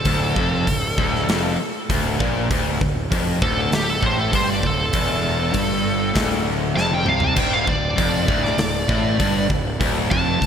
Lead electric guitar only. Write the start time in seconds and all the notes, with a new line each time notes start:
Already playing: A4
3.43 A4
3.75 G4
3.90 A4
4.06 C5
4.21 A4
4.35 C5
4.50 D5
4.66 A4
6.77 A5
6.94 G5
7.08 F5
7.24 A5
7.39 G5
7.53 F5
7.69 D5
10.11 A5